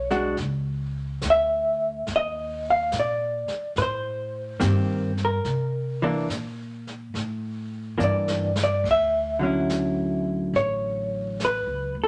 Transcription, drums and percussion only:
0.10 snare
0.37 brush sweep, snare
1.22 snare, hi-hat pedal
2.07 brush sweep, snare
2.92 snare, hi-hat pedal
3.48 snare
3.76 brush sweep, snare
4.60 snare, hi-hat pedal
5.17 snare
5.45 brush sweep, snare
6.30 snare, hi-hat pedal
6.87 snare
7.15 brush sweep, snare
8.00 hi-hat pedal
8.28 snare
8.56 snare
8.84 brush sweep, kick, snare, ride
9.69 snare, hi-hat pedal
10.55 brush sweep, snare
11.40 snare, hi-hat pedal

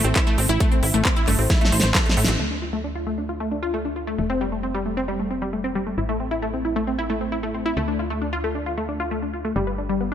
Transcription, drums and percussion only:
0.04 closed hi-hat
0.16 kick, clap, closed hi-hat
0.27 closed hi-hat
0.38 open hi-hat
0.60 kick, closed hi-hat
0.72 closed hi-hat
0.83 open hi-hat
0.94 closed hi-hat
1.05 kick, clap, closed hi-hat
1.16 closed hi-hat
1.28 clap, open hi-hat
1.39 open hi-hat
1.50 kick, snare, closed hi-hat
1.61 snare, closed hi-hat
1.72 open hi-hat
1.80 snare, closed hi-hat
1.95 kick, snare, clap, closed hi-hat
2.06 snare, closed hi-hat
2.17 open hi-hat
2.25 snare, closed hi-hat

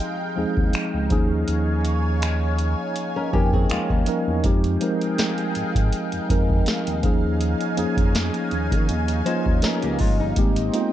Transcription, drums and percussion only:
0.00 closed hi-hat
0.57 kick
0.73 finger snap, closed hi-hat
1.10 kick, closed hi-hat
1.48 closed hi-hat
1.85 closed hi-hat
2.22 finger snap, closed hi-hat
2.58 closed hi-hat
2.96 closed hi-hat
3.33 kick
3.53 kick
3.70 finger snap, closed hi-hat
3.90 kick
4.06 closed hi-hat
4.44 kick, closed hi-hat
4.64 closed hi-hat
4.81 closed hi-hat
5.01 closed hi-hat
5.18 snare, closed hi-hat
5.38 closed hi-hat
5.55 closed hi-hat
5.75 kick, closed hi-hat
5.92 closed hi-hat
6.12 closed hi-hat
6.30 kick, closed hi-hat
6.50 kick
6.66 snare, closed hi-hat
6.87 closed hi-hat
7.03 kick, closed hi-hat
7.41 closed hi-hat
7.61 closed hi-hat
7.77 closed hi-hat
7.97 kick, closed hi-hat
8.15 snare, closed hi-hat
8.34 closed hi-hat
8.51 closed hi-hat
8.71 kick, closed hi-hat
8.89 closed hi-hat
9.08 closed hi-hat
9.26 closed hi-hat
9.46 kick
9.62 snare, closed hi-hat
9.82 closed hi-hat
9.99 kick, open hi-hat
10.36 kick, closed hi-hat
10.56 closed hi-hat
10.74 closed hi-hat

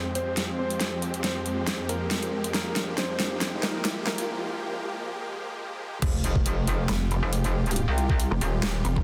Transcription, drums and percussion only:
0.15 closed hi-hat
0.37 snare, closed hi-hat
0.70 closed hi-hat
0.80 snare, closed hi-hat
1.02 closed hi-hat
1.14 closed hi-hat
1.24 snare, closed hi-hat
1.46 closed hi-hat
1.67 snare, closed hi-hat
1.89 closed hi-hat
2.11 snare, closed hi-hat
2.23 closed hi-hat
2.44 closed hi-hat
2.54 snare, closed hi-hat
2.76 snare, closed hi-hat
2.98 snare, closed hi-hat
3.20 snare, closed hi-hat
3.41 snare, closed hi-hat
3.63 snare, closed hi-hat
3.85 snare, closed hi-hat
4.07 snare
4.18 closed hi-hat
6.02 kick, closed hi-hat, crash
6.24 closed hi-hat
6.36 kick
6.46 closed hi-hat
6.67 closed hi-hat
6.89 snare, closed hi-hat
7.11 closed hi-hat
7.33 closed hi-hat
7.44 closed hi-hat
7.66 closed hi-hat
7.71 closed hi-hat
7.76 closed hi-hat
7.98 closed hi-hat
8.09 kick
8.20 closed hi-hat
8.41 closed hi-hat
8.63 snare, closed hi-hat
8.85 closed hi-hat
8.96 kick

